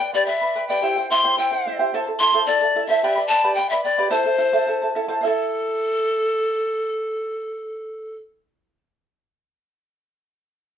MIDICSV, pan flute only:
0, 0, Header, 1, 2, 480
1, 0, Start_track
1, 0, Key_signature, 0, "minor"
1, 0, Tempo, 549451
1, 718, Time_signature, 2, 2, 24, 8
1, 4554, Tempo, 543478
1, 9469, End_track
2, 0, Start_track
2, 0, Title_t, "Pan flute"
2, 0, Program_c, 0, 75
2, 0, Note_on_c, 0, 79, 122
2, 93, Note_off_c, 0, 79, 0
2, 124, Note_on_c, 0, 74, 89
2, 223, Note_off_c, 0, 74, 0
2, 228, Note_on_c, 0, 76, 104
2, 568, Note_off_c, 0, 76, 0
2, 597, Note_on_c, 0, 79, 103
2, 933, Note_off_c, 0, 79, 0
2, 965, Note_on_c, 0, 84, 112
2, 1186, Note_off_c, 0, 84, 0
2, 1211, Note_on_c, 0, 79, 93
2, 1541, Note_off_c, 0, 79, 0
2, 1916, Note_on_c, 0, 84, 113
2, 2141, Note_off_c, 0, 84, 0
2, 2154, Note_on_c, 0, 74, 106
2, 2492, Note_off_c, 0, 74, 0
2, 2505, Note_on_c, 0, 76, 103
2, 2847, Note_off_c, 0, 76, 0
2, 2861, Note_on_c, 0, 81, 106
2, 3093, Note_off_c, 0, 81, 0
2, 3099, Note_on_c, 0, 79, 104
2, 3228, Note_on_c, 0, 76, 92
2, 3241, Note_off_c, 0, 79, 0
2, 3349, Note_off_c, 0, 76, 0
2, 3354, Note_on_c, 0, 74, 94
2, 3583, Note_on_c, 0, 72, 98
2, 3596, Note_off_c, 0, 74, 0
2, 4307, Note_off_c, 0, 72, 0
2, 4571, Note_on_c, 0, 69, 106
2, 7156, Note_off_c, 0, 69, 0
2, 9469, End_track
0, 0, End_of_file